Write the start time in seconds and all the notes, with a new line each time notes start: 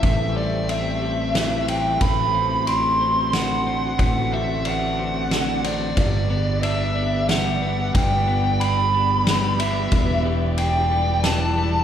Already playing: E3 G3 A3 C4 G4 C5
0.03 A1 A2 E5, kick, ride
0.36 G3 D5
0.69 C4 E5, ride
1.02 G3
1.35 E3, snare, ride
1.68 G3 G5, ride
2.01 A1 A2 D3 F#4 B5, kick, ride
2.35 C4
2.67 D4 C6, ride
3.01 C4
3.33 D3 F#5, snare, ride
3.67 C4
3.99 A1 A2 D5 F#5, kick, ride
4.33 C4 E5
4.65 D4 F#5, ride
4.99 C4
5.31 D3, snare, ride
5.64 C4 D5, ride
5.97 G1 G2 B3 G4 D5, kick, ride
6.30 B3
6.63 D4 E5, ride
6.96 B3
7.29 G3 F#5, snare, ride
7.62 B3
7.95 G1 G2 G5, kick, ride
8.27 B3
8.60 D4 B5, ride
8.94 B3
9.27 G3, snare, ride
9.60 B3 E5, ride
9.92 E1 E2 E3 D5, kick, ride
10.25 G3
10.58 D4 G5, ride
10.91 G3
11.24 E3 A5, snare, ride
11.58 G3